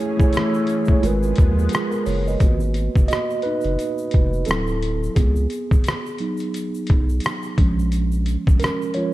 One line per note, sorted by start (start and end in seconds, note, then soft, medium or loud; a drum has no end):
0.00 1.01 E3 medium
0.00 0.17 A3 medium
0.00 1.01 A3 medium
0.00 1.01 C#4 medium
0.00 0.19 E4 medium
0.00 0.21 G#4 medium
0.00 2.36 G#4 medium
0.00 0.24 C#5 medium
0.00 shaker soft
0.17 0.64 A3 medium
0.17 0.65 E4 medium
0.17 kick loud
0.17 shaker medium
0.21 0.66 G#4 medium
0.21 0.67 C#5 medium
0.33 closed hi-hat medium
0.33 shaker medium
0.37 cross-stick loud
0.54 shaker soft
0.67 closed hi-hat medium
0.67 shaker soft
0.85 1.02 A3 medium
0.85 1.03 E4 medium
0.85 kick medium
0.85 shaker soft
0.91 1.04 G#4 medium
0.91 1.05 C#5 medium
1.00 1.33 G#1 loud
1.00 2.39 F3 medium
1.00 2.13 G#3 medium
1.00 2.39 G#3 medium
1.00 2.39 B3 medium
1.00 1.71 F4 medium
1.00 closed hi-hat medium
1.05 1.73 A#4 medium
1.05 1.74 B4 medium
1.05 shaker medium
1.23 shaker medium
1.36 1.69 D#2 medium
1.36 kick medium
1.36 closed hi-hat medium
1.36 shaker soft
1.59 shaker soft
1.69 1.91 F4 medium
1.69 1.91 G#4 medium
1.69 closed hi-hat medium
1.69 shaker medium
1.75 cross-stick loud
1.91 2.05 A#4 medium
1.91 shaker soft
2.06 2.37 F#1 medium
2.06 2.26 A#4 medium
2.06 2.25 C#5 medium
2.06 open hi-hat medium
2.06 shaker medium
2.27 2.60 B4 medium
2.27 2.60 D#5 medium
2.27 shaker soft
2.40 2.89 G#1 loud
2.40 2.88 A#3 soft
2.40 2.89 B3 soft
2.40 2.89 F#4 medium
2.40 kick loud
2.40 closed hi-hat medium
2.40 shaker medium
2.60 shaker medium
2.74 closed hi-hat medium
2.74 shaker soft
2.96 3.08 F#1 medium
2.96 kick medium
2.96 shaker soft
3.08 3.42 F#4 medium
3.08 3.41 D#5 loud
3.08 closed hi-hat medium
3.08 shaker medium
3.13 cross-stick loud
3.30 shaker soft
3.42 4.44 D#4 medium
3.42 4.50 B4 medium
3.42 closed hi-hat soft
3.61 3.77 F#1 medium
3.61 closed hi-hat soft
3.61 shaker soft
3.79 closed hi-hat medium
3.79 shaker medium
3.98 shaker medium
4.11 4.44 F1 medium
4.11 kick medium
4.11 closed hi-hat medium
4.33 shaker soft
4.45 5.09 D1 loud
4.45 4.95 F#3 medium
4.45 5.13 C4 medium
4.45 4.96 E4 medium
4.45 5.18 A4 medium
4.45 closed hi-hat medium
4.45 shaker medium
4.51 cross-stick loud
4.67 shaker soft
4.82 closed hi-hat medium
5.03 shaker soft
5.15 5.47 C#2 loud
5.15 6.19 B3 medium
5.15 7.53 G#4 medium
5.15 kick loud
5.15 closed hi-hat medium
5.15 shaker medium
5.36 shaker medium
5.50 closed hi-hat medium
5.50 shaker medium
5.71 kick loud
5.71 shaker soft
5.84 closed hi-hat medium
5.84 shaker medium
5.88 cross-stick loud
6.06 shaker soft
6.18 6.68 F#3 medium
6.18 6.68 B3 soft
6.18 6.68 D#4 medium
6.18 closed hi-hat medium
6.37 closed hi-hat soft
6.37 shaker soft
6.54 closed hi-hat medium
6.54 shaker medium
6.74 shaker medium
6.87 7.20 B1 medium
6.87 kick medium
6.87 closed hi-hat medium
7.09 shaker soft
7.20 closed hi-hat medium
7.20 shaker medium
7.26 cross-stick loud
7.43 shaker soft
7.58 8.37 A#1 medium
7.58 8.06 F3 medium
7.58 8.06 G#3 medium
7.58 8.06 C#4 medium
7.58 kick loud
7.58 closed hi-hat medium
7.79 shaker soft
7.92 closed hi-hat medium
7.92 shaker medium
8.12 shaker medium
8.26 closed hi-hat medium
8.26 shaker medium
8.47 8.60 A#1 medium
8.47 kick medium
8.47 shaker medium
8.60 8.77 C#4 medium
8.60 8.76 A#4 medium
8.60 closed hi-hat medium
8.60 shaker medium
8.64 cross-stick loud
8.82 shaker soft
8.94 9.14 F3 soft
8.94 9.14 G#3 soft
8.94 9.14 C#4 soft
8.94 9.12 F4 medium
8.94 9.10 C#5 medium
8.94 closed hi-hat medium